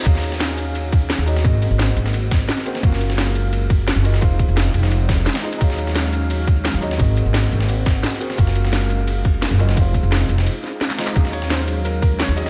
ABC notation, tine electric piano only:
X:1
M:4/4
L:1/8
Q:1/4=173
K:Ebdor
V:1 name="Tine electric piano"
[EGAdf]6- [EGAdf] [EGAde] | [CGABe]6- [CGABe] [CGABc] | [DFGBf]6- [DFGBf] [DFGBe] | [EFAcf]6- [EFAcf] [EFAce] |
[EGAdf]6- [EGAdf] [EGAde] | [CGABe]6- [CGABe] [CGABc] | [DFGBf]6- [DFGBf] [DFGBe] | [EFAcf]6- [EFAcf] [EFAce] |
[DEGAf]6- [DEGAf] [EGAde] |]